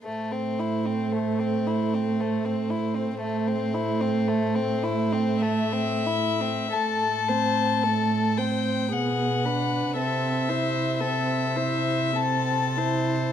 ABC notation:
X:1
M:3/4
L:1/16
Q:1/4=56
K:Am
V:1 name="Violin"
c12 | c8 e4 | a6 g2 ^f4 | e4 e4 a4 |]
V:2 name="Violin"
A, C E C A, C E C A, C E C | A, C E C A, C E C A, C E C | A2 c2 A2 c2 ^G2 B2 | A2 c2 A2 c2 A2 c2 |]
V:3 name="Viola"
A,12 | A,12 | A,2 C2 A,2 C2 B,2 D2 | C2 E2 C2 E2 C2 E2 |]
V:4 name="Cello" clef=bass
A,,12 | A,,12 | A,,8 B,,4 | C,12 |]